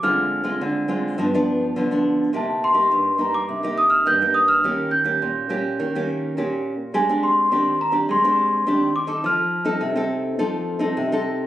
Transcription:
0.03 nylon-string guitar D3 G#3 C4 F4, celesta F6
0.44 nylon-string guitar G#3 C4 F4
0.61 nylon-string guitar D3
0.88 nylon-string guitar G#3 C4 F4
1.18 nylon-string guitar G2 F3 B3 D4
1.34 nylon-string guitar F3 B3 D4
1.76 nylon-string guitar D3 F3 B3 D4
1.91 nylon-string guitar F3 B3 D4
2.33 nylon-string guitar C3 A#3 D#4 G4, celesta A5
2.64 celesta C6
2.74 nylon-string guitar A#3 D#4 G4
2.92 nylon-string guitar G2
3.18 nylon-string guitar A#3 D#4 G4, celesta A#5
3.34 celesta D6
3.49 nylon-string guitar C3
3.63 nylon-string guitar A#3 D#4 G4
3.78 celesta D#6
3.90 celesta F6
4.06 nylon-string guitar G2 A#3 D#4 G4, celesta G6
4.21 nylon-string guitar A#3 D#4 G4
4.34 celesta D#6
4.48 celesta F6
4.64 nylon-string guitar D#3 A#3 C#4 G4
4.91 celesta G6
5.05 nylon-string guitar A#3 C#4 G4
5.22 nylon-string guitar A#2
5.49 nylon-string guitar A#3 C#4 G4
5.80 nylon-string guitar D#3
5.95 nylon-string guitar A#3 C#4 G4
6.37 nylon-string guitar A#2 A#3 C#4 G4
6.94 nylon-string guitar G#3 C4 D4 G4, celesta G#5
7.09 nylon-string guitar C4 D4 G4
7.23 celesta C6
7.52 nylon-string guitar D#3 C4 D4 G4
7.81 celesta A#5
7.92 nylon-string guitar C4 D4 G4
8.09 nylon-string guitar G#3, celesta C6
8.24 nylon-string guitar C4 D4 G4
8.67 nylon-string guitar D#3 C4 D4 G4
8.96 celesta D6
9.07 nylon-string guitar C4 D#4 A4
9.24 nylon-string guitar F3, celesta F6
9.65 nylon-string guitar C4 D#4 A4
9.81 nylon-string guitar C3
9.96 nylon-string guitar C4 D#4 A4
10.39 nylon-string guitar F3 C4 D#4 A4
10.79 nylon-string guitar C4 D#4 A4
10.97 nylon-string guitar C3
11.12 nylon-string guitar C4 D#4 A4

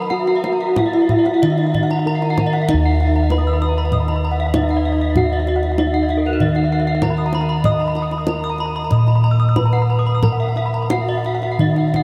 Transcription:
Already playing: kettle gongs F#3, bronze metallophone A#4
0.02 bronze metallophone A#5
0.10 kettle gongs F#4, bronze metallophone F#4 F#5
0.19 bronze metallophone E5
0.27 bronze metallophone F#5, kendang slap
0.35 bronze metallophone E5
0.44 bronze metallophone F#5, kendang high
0.53 bronze metallophone A#5
0.60 bronze metallophone E5, kendang slap
0.69 bronze metallophone F#5
0.76 kettle gongs E4, bronze metallophone E4 E5, kendang high, kendang low
0.86 bronze metallophone D#5
0.93 bronze metallophone E5, kendang slap
1.02 bronze metallophone D#5
1.09 bronze metallophone E5, kendang low
1.19 bronze metallophone D#5
1.25 bronze metallophone F#5, kendang slap
1.34 bronze metallophone E5
1.42 kettle gongs D#3, bronze metallophone D#4 D#5, kendang low
1.50 bronze metallophone E5
1.58 bronze metallophone D#5, kendang slap
1.67 bronze metallophone E5
1.74 bronze metallophone D#5, kendang low
1.83 bronze metallophone F#5
1.90 bronze metallophone A#5, kendang slap
1.99 bronze metallophone F#5
2.06 kettle gongs E4, bronze metallophone A#4 A#5
2.15 bronze metallophone F#5
2.22 bronze metallophone A#5, kendang slap
2.30 bronze metallophone F#5
2.38 bronze metallophone A#5, kendang high, kendang low
2.46 bronze metallophone D#5
2.53 bronze metallophone F#5, kendang slap
2.62 bronze metallophone E5
2.69 kettle gongs D#4, bronze metallophone D#4 D#5, kendang low
2.74 kettle gongs D#2, bronze metallophone E5
2.85 bronze metallophone F#5
2.92 bronze metallophone E5
3.00 bronze metallophone F#5, kendang slap
3.07 bronze metallophone E5
3.16 bronze metallophone A#5, kendang slap
3.23 bronze metallophone F#5
3.30 kettle gongs E4, bronze metallophone B4 B5, kendang slap, kendang high
3.38 bronze metallophone D#6
3.47 bronze metallophone E6
3.53 bronze metallophone B5
3.62 bronze metallophone D#6, kendang slap
3.69 bronze metallophone A#5
3.78 bronze metallophone B5
3.85 bronze metallophone A#5
3.92 bronze metallophone D#5 D#6, kendang low
4.00 bronze metallophone B5
4.08 bronze metallophone A#5, kendang slap
4.16 bronze metallophone B5
4.25 bronze metallophone A#5
4.32 bronze metallophone F#5
4.40 bronze metallophone E5
4.47 bronze metallophone F#5
4.54 bronze metallophone D#4 D#5, kettle gongs E4, kendang high, kendang low
4.62 bronze metallophone E5
4.69 bronze metallophone F#5, kendang slap
4.77 bronze metallophone D#5
4.85 bronze metallophone E5
4.92 bronze metallophone D#5
5.01 bronze metallophone E5
5.10 bronze metallophone D#5
5.16 bronze metallophone F#4 F#5, kettle gongs F#4, kendang low
5.24 bronze metallophone E5
5.33 bronze metallophone D#5
5.40 bronze metallophone E5
5.47 bronze metallophone D#5, kendang slap
5.56 bronze metallophone F#5
5.63 bronze metallophone E5, kendang slap
5.72 bronze metallophone F#5
5.78 bronze metallophone D#4 D#5, kettle gongs E4, kendang slap, kendang high
5.87 bronze metallophone E5
5.94 bronze metallophone F#5
6.03 bronze metallophone D#5
6.09 bronze metallophone E5, kendang slap
6.17 bronze metallophone A#4
6.26 bronze metallophone B4
6.33 bronze metallophone A#4
6.40 kettle gongs D#3, bronze metallophone D#4 D#5, kendang low
6.49 bronze metallophone E5
6.55 bronze metallophone F#5, kendang slap
6.64 bronze metallophone E5
6.72 bronze metallophone F#5
6.80 bronze metallophone E5
6.87 bronze metallophone F#5
6.95 bronze metallophone E5
7.02 kettle gongs E4, bronze metallophone A#4 A#5, kendang high, kendang low
7.10 bronze metallophone B5
7.17 bronze metallophone D#6, kendang slap
7.26 bronze metallophone A#5
7.33 bronze metallophone B5, kendang high
7.41 bronze metallophone A#5
7.49 bronze metallophone B5
7.57 bronze metallophone A#5
7.64 bronze metallophone D#5 D#6, kettle gongs D#5, kendang low
7.72 bronze metallophone B5
7.80 bronze metallophone A#5
7.88 bronze metallophone B5
7.95 bronze metallophone A#5, kendang slap
8.02 bronze metallophone D#6
8.11 bronze metallophone B5, kendang slap
8.18 bronze metallophone D#6
8.27 kettle gongs E4, bronze metallophone A#4 A#5, kendang slap, kendang high
8.34 bronze metallophone B5
8.44 bronze metallophone D#6
8.50 bronze metallophone A#5
8.58 bronze metallophone B5, kendang slap
8.66 bronze metallophone A#5
8.76 bronze metallophone B5
8.84 bronze metallophone A#5
8.91 kettle gongs A#2, bronze metallophone D#5 D#6, kendang low
8.98 bronze metallophone B5
9.07 bronze metallophone A#5, kendang slap
9.15 bronze metallophone B5
9.24 bronze metallophone A#5
9.31 bronze metallophone E6
9.40 bronze metallophone D#6
9.49 bronze metallophone E6
9.56 kettle gongs E4, bronze metallophone B4 B5, kendang high, kendang low
9.65 bronze metallophone A#5
9.73 bronze metallophone F#5, kendang slap
9.82 bronze metallophone B5
9.90 bronze metallophone A#5
9.99 bronze metallophone D#6
10.06 bronze metallophone B5
10.15 bronze metallophone D#6
10.22 bronze metallophone A#4 A#5, kettle gongs A#4, kendang low
10.32 bronze metallophone F#5
10.40 bronze metallophone E5
10.49 bronze metallophone F#5
10.56 bronze metallophone E5, kendang slap
10.66 bronze metallophone B5
10.74 bronze metallophone A#5
10.82 bronze metallophone B5
10.90 kettle gongs E4, bronze metallophone F#4 F#5, kendang high
11.01 bronze metallophone E5
11.09 bronze metallophone D#5
11.17 bronze metallophone F#5
11.24 bronze metallophone E5, kendang slap
11.35 bronze metallophone F#5
11.42 bronze metallophone E5, kendang slap
11.52 bronze metallophone F#5
11.59 kettle gongs D#3, bronze metallophone D#4 D#5, kendang low
11.70 bronze metallophone E5
11.76 bronze metallophone F#5, kendang slap
11.88 bronze metallophone E5
11.94 bronze metallophone F#5, kendang slap, kendang low

